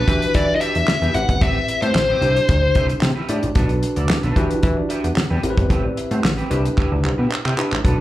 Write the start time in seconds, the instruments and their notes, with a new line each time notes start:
Already playing: lead electric guitar B4
0.07 analog synth bass E3, clean electric guitar D4 G4 B4, tine electric piano D4 F#4 G4 B4, kick, closed hi-hat
0.22 muted clean electric guitar stroke, closed hi-hat
0.34 analog synth bass E3, lead electric guitar D5, muted clean electric guitar stroke, kick, closed hi-hat
0.48 muted clean electric guitar stroke
0.55 lead electric guitar D#5
0.61 clean electric guitar D4 G4 B4, lead electric guitar E5, closed hi-hat
0.75 analog synth bass E2, muted clean electric guitar stroke, closed hi-hat
0.87 muted clean electric guitar stroke, snare, clap
1.02 analog synth bass E2, clean electric guitar D4 G4 B4, closed hi-hat
1.14 analog synth bass A1, tine electric piano C4 E4 G4 B4, lead electric guitar F#5, muted clean electric guitar stroke, closed hi-hat
1.29 analog synth bass G1, muted clean electric guitar stroke, kick, closed hi-hat
1.41 analog synth bass A1, clean electric guitar C4 G4 B4, lead electric guitar E5, kick, closed hi-hat
1.56 muted clean electric guitar stroke
1.68 muted clean electric guitar stroke, closed hi-hat
1.82 analog synth bass A2, clean electric guitar C4 G4 C5, lead electric guitar C5, closed hi-hat
1.95 analog synth bass A1, muted clean electric guitar stroke, snare, clap
2.09 clean electric guitar C4 G4 B4
2.21 analog synth bass C2, tine electric piano D4 E4 G4 C5, clean electric guitar E4 G4 B4, closed hi-hat
2.36 muted clean electric guitar stroke, closed hi-hat
2.48 analog synth bass D2, muted clean electric guitar stroke, kick, closed hi-hat
2.63 muted clean electric guitar stroke
2.75 analog synth bass C2, clean electric guitar E4 G4 B4, kick, closed hi-hat
2.89 muted clean electric guitar stroke, closed hi-hat
3.01 analog synth bass C3, muted clean electric guitar stroke, snare, clap
3.16 clean electric guitar E4 G4 B4
3.28 analog synth bass A2, tine electric piano D4 E4 G4 D5, clean electric guitar E4 G4 B4, closed hi-hat
3.43 analog synth bass A1, muted clean electric guitar stroke, closed hi-hat
3.55 analog synth bass B1, clean electric guitar D4 A4 B4, tine electric piano D4 F#4 A4 B4, kick, closed hi-hat
3.69 muted clean electric guitar stroke, closed hi-hat
3.82 muted clean electric guitar stroke, closed hi-hat
3.96 analog synth bass D2, clean electric guitar D4 A4 D5, closed hi-hat
4.09 muted clean electric guitar stroke, snare, clap
4.23 analog synth bass B1, clean electric guitar D4 A4 B4, closed hi-hat
4.35 analog synth bass E3, clean electric guitar D4 G4 B4, tine electric piano D4 F#4 G4 B4, kick, closed hi-hat
4.50 muted clean electric guitar stroke, closed hi-hat
4.62 analog synth bass E3, tine electric piano B4, muted clean electric guitar stroke, kick, closed hi-hat
4.77 tine electric piano D5, muted clean electric guitar stroke
4.89 clean electric guitar D4 G4 B4, tine electric piano E5, closed hi-hat
5.03 analog synth bass E2, tine electric piano F#5, muted clean electric guitar stroke, closed hi-hat
5.16 muted clean electric guitar stroke, snare, clap
5.30 analog synth bass E2, clean electric guitar D4 G4 B4, tine electric piano G5
5.43 analog synth bass A1, tine electric piano C4 E4 G4 A#4, muted clean electric guitar stroke, closed hi-hat
5.50 tine electric piano B4
5.57 analog synth bass G1, muted clean electric guitar stroke, kick, closed hi-hat
5.70 analog synth bass A1, clean electric guitar C4 G4 B4, kick, closed hi-hat
5.84 tine electric piano D5, muted clean electric guitar stroke
5.97 tine electric piano E5, muted clean electric guitar stroke, closed hi-hat
6.11 analog synth bass A2, clean electric guitar C4 G4 C5, tine electric piano F#5, closed hi-hat
6.24 analog synth bass A1, muted clean electric guitar stroke, snare, clap
6.37 clean electric guitar C4 G4 B4, tine electric piano G5, closed hi-hat
6.50 analog synth bass C2, tine electric piano D4 E4 G4 B4, clean electric guitar E4 G4 B4, closed hi-hat
6.65 muted clean electric guitar stroke, closed hi-hat
6.77 clean electric guitar E4 G4 B4, kick, clap
6.91 analog synth bass D2, muted clean electric guitar stroke
7.04 analog synth bass C2, muted clean electric guitar stroke, clap
7.18 analog synth bass B2, clean electric guitar E4 G4 B4
7.30 muted clean electric guitar stroke, clap
7.45 analog synth bass C3, clean electric guitar E4 G4 B4, clap
7.57 tine electric piano D4 E4 G4 B4, clean electric guitar E4 G4 B4, clap
7.71 analog synth bass A1, muted clean electric guitar stroke, clap
7.84 analog synth bass B1, clean electric guitar D4 A4 B4, tine electric piano D4 F#4 A4 B4, kick, closed hi-hat